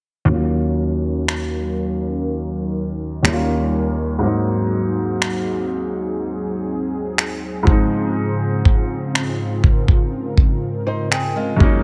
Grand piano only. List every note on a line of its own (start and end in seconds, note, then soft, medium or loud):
0.25 3.18 D#2 medium
0.25 3.19 F#3 medium
0.29 3.20 A#3 medium
0.29 3.21 C#4 medium
0.29 3.22 F4 medium
3.23 4.22 D#2 medium
3.23 4.22 G3 medium
3.23 4.21 A#3 medium
3.23 4.23 C#4 medium
3.27 3.32 E4 medium
3.33 4.27 F4 medium
4.19 7.61 G#2 medium
4.19 7.62 F#3 medium
4.19 7.63 A#3 medium
4.25 7.64 C4 medium
4.25 7.65 D#4 medium
7.63 11.54 G#2 medium
7.63 11.55 F3 medium
7.67 11.57 G#3 medium
7.67 11.58 C4 medium
7.71 11.59 D#4 medium
11.57 11.83 F#2 medium
11.57 11.83 G#3 medium
11.61 11.83 A#3 medium
11.61 11.83 C#4 medium
11.61 11.83 D#4 medium